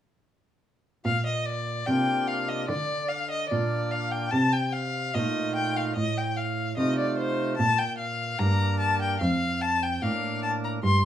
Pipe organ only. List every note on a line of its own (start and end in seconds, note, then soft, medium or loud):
1.05 1.84 A#2 soft
1.88 2.65 C3 soft
1.88 2.65 A#3 soft
1.88 2.65 D4 soft
1.88 2.66 F4 soft
2.69 3.47 D3 soft
3.51 4.29 A#2 soft
3.51 4.29 A#3 soft
3.51 4.29 D4 soft
3.51 4.30 F4 soft
4.33 5.11 C3 soft
5.16 5.93 A#2 soft
5.16 5.93 A3 soft
5.16 5.93 D#4 soft
5.16 5.93 F4 soft
5.97 6.74 A2 soft
6.77 7.55 C3 soft
6.77 7.54 A3 soft
6.77 7.55 D#4 soft
6.77 7.55 F4 soft
7.58 8.35 A#2 soft
8.39 9.17 G2 soft
8.39 9.17 A#3 soft
8.39 9.17 D4 soft
8.39 9.17 A#4 soft
9.21 9.98 F2 medium
10.02 10.79 A2 soft
10.02 10.79 A#3 soft
10.02 10.79 D4 soft
10.02 10.80 A#4 soft
10.83 11.05 G2 medium